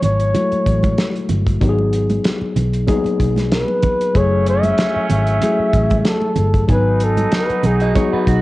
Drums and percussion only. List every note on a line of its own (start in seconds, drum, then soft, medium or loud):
0.02 closed hi-hat medium
0.02 low conga medium
0.20 closed hi-hat soft
0.35 closed hi-hat medium
0.35 muted conga soft
0.35 high conga medium
0.35 low conga medium
0.52 closed hi-hat soft
0.66 kick medium
0.66 closed hi-hat medium
0.83 kick medium
0.83 closed hi-hat soft
0.83 high conga medium
0.98 snare loud
0.98 closed hi-hat medium
0.98 muted conga soft
1.15 closed hi-hat soft
1.29 closed hi-hat medium
1.29 low conga medium
1.47 kick medium
1.47 closed hi-hat soft
1.61 kick loud
1.61 closed hi-hat medium
1.79 muted conga soft
1.93 closed hi-hat medium
2.09 closed hi-hat soft
2.09 high conga medium
2.24 snare loud
2.24 closed hi-hat medium
2.42 muted conga soft
2.56 closed hi-hat medium
2.56 low conga medium
2.73 closed hi-hat soft
2.88 kick medium
2.88 closed hi-hat medium
2.88 high conga medium
2.88 low conga medium
3.04 closed hi-hat soft
3.04 muted conga soft
3.20 kick medium
3.20 closed hi-hat medium
3.36 snare soft
3.36 closed hi-hat soft
3.36 high conga medium
3.52 snare loud
3.52 closed hi-hat medium
3.68 muted conga soft
3.82 kick medium
3.82 closed hi-hat medium
3.82 low conga medium
4.01 closed hi-hat soft
4.15 kick medium
4.15 closed hi-hat medium
4.15 muted conga soft
4.46 closed hi-hat medium
4.63 closed hi-hat soft
4.63 high conga medium
4.78 snare loud
4.78 closed hi-hat medium
5.10 closed hi-hat medium
5.10 low conga medium
5.27 closed hi-hat soft
5.42 closed hi-hat medium
5.42 high conga medium
5.42 low conga medium
5.73 kick medium
5.73 closed hi-hat medium
5.90 kick medium
5.90 closed hi-hat soft
5.90 high conga medium
6.05 snare medium
6.05 closed hi-hat medium
6.05 muted conga soft
6.22 muted conga soft
6.36 closed hi-hat medium
6.36 low conga medium
6.54 kick medium
6.54 closed hi-hat medium
6.68 kick loud
6.68 closed hi-hat medium
6.68 muted conga soft
7.00 closed hi-hat medium
7.17 closed hi-hat soft
7.17 high conga medium
7.32 snare loud
7.32 closed hi-hat medium
7.50 closed hi-hat soft
7.63 closed hi-hat medium
7.63 low conga medium
7.80 closed hi-hat soft
7.96 kick medium
7.96 closed hi-hat medium
7.96 muted conga soft
7.96 high conga medium
7.96 low conga medium
8.27 kick medium
8.27 closed hi-hat medium